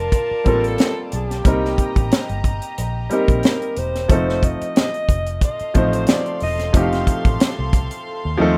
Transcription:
Already playing: grand piano G3 A#3 C4 F4 A4, violin section F4 D5 A5, alto saxophone A#4
0.12 kick, closed hi-hat
0.31 muted fingered electric bass stroke
0.44 fingered electric bass A1, grand piano G3 A#3 C4 F4 A4, kick, closed hi-hat
0.64 alto saxophone A4, closed hi-hat
0.78 snare, closed hi-hat
1.12 fingered electric bass B1, alto saxophone G4, closed hi-hat
1.31 snare, closed hi-hat
1.44 fingered electric bass C2, grand piano G3 A#3 C4 D#4 A#4, violin section G4 D#5 A#5, kick, closed hi-hat
1.65 snare
1.78 kick, closed hi-hat
1.96 fingered electric bass A1, kick, closed hi-hat
2.11 snare, closed hi-hat
2.29 fingered electric bass G1, closed hi-hat
2.44 kick, closed hi-hat
2.62 closed hi-hat
2.78 fingered electric bass A#1, closed hi-hat
3.10 grand piano G3 A#3 C4 D#4 G4, alto saxophone A#4, closed hi-hat
3.28 fingered electric bass A#1, kick, closed hi-hat
3.43 snare, closed hi-hat
3.62 closed hi-hat
3.76 fingered electric bass E1, alto saxophone C5, closed hi-hat
3.95 snare, closed hi-hat
4.09 fingered electric bass F1, grand piano F3 A3 C4 D#4 A4, kick, closed hi-hat
4.29 snare
4.43 alto saxophone D#5, kick, closed hi-hat
4.61 muted fingered electric bass stroke, closed hi-hat
4.76 snare, closed hi-hat
4.94 closed hi-hat
5.09 fingered electric bass F1, kick, closed hi-hat
5.26 closed hi-hat
5.41 violin section A4 F5 C6, alto saxophone D#5, kick, closed hi-hat
5.59 muted fingered electric bass stroke, closed hi-hat
5.74 fingered electric bass A1, grand piano F3 A3 C4 D#4 C5, kick, closed hi-hat
5.93 alto saxophone C5, closed hi-hat
6.07 alto saxophone D5, snare, closed hi-hat
6.26 closed hi-hat
6.40 fingered electric bass E1, alto saxophone D#5, open hi-hat
6.59 snare, closed hi-hat
6.73 fingered electric bass F1, grand piano F3 A3 C4 D#4 G4, kick, closed hi-hat
6.77 alto saxophone F5
6.92 snare, closed hi-hat
7.07 kick, closed hi-hat
7.25 fingered electric bass A1, kick, closed hi-hat
7.40 muted fingered electric bass stroke, snare, closed hi-hat
7.59 fingered electric bass C2
7.73 kick, closed hi-hat
7.91 closed hi-hat
8.25 fingered electric bass D#2
8.38 fingered electric bass D#2, grand piano F3 A3 C4 D#4 A4

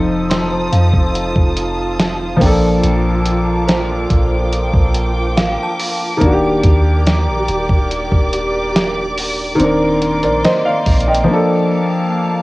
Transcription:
Already playing: 808-style bass F1, grand piano F3 C4 D#4 A4, string section F4 C5 A5 D#6
0.30 synth bell C6, snare, closed hi-hat
0.72 808-style bass F2, synth bell F5, closed hi-hat
0.93 808-style bass F1, kick
1.15 closed hi-hat
1.36 808-style bass F1, kick
1.57 closed hi-hat
2.00 snare, closed hi-hat
2.37 grand piano F3 A#3
2.41 808-style bass A#1, string section A#3 D6, grand piano D4, synth bell G5, kick, open hi-hat
2.46 grand piano A4
2.83 808-style bass A#1, closed hi-hat
3.26 closed hi-hat
3.68 synth bell C5, snare, closed hi-hat
4.10 808-style bass A#1, string section G5, kick, closed hi-hat
4.53 closed hi-hat
4.74 808-style bass A#1, kick
4.95 closed hi-hat
5.37 808-style bass A1, synth bell F5, snare, closed hi-hat
5.63 synth bell A5
5.80 open hi-hat
6.17 grand piano D#3 A#3
6.22 808-style bass D#1, grand piano D4, string section G4 A#4 D5, kick, closed hi-hat
6.26 grand piano F#4
6.33 grand piano G4
6.64 808-style bass D#2, kick, closed hi-hat
7.07 snare, closed hi-hat
7.28 808-style bass A#1
7.48 808-style bass D#1, closed hi-hat
7.69 808-style bass D#1, kick
7.91 closed hi-hat
8.12 808-style bass D#1, kick
8.33 closed hi-hat
8.76 snare, closed hi-hat
9.18 open hi-hat
9.55 grand piano D#3 C4
9.60 808-style bass D#1, string section A#3 C6, grand piano D4, closed hi-hat
9.64 grand piano A#4
10.02 closed hi-hat
10.23 808-style bass A#1, grand piano A#4 D5, closed hi-hat
10.44 grand piano C5 D#5, snare, closed hi-hat
10.65 grand piano D5 F5
10.86 808-style bass A#1, kick, closed hi-hat, open hi-hat
11.00 closed hi-hat
11.07 grand piano D#5 G5
11.14 closed hi-hat
11.24 grand piano F3 A#3
11.28 grand piano D4, string section F5 A5
11.33 grand piano A4

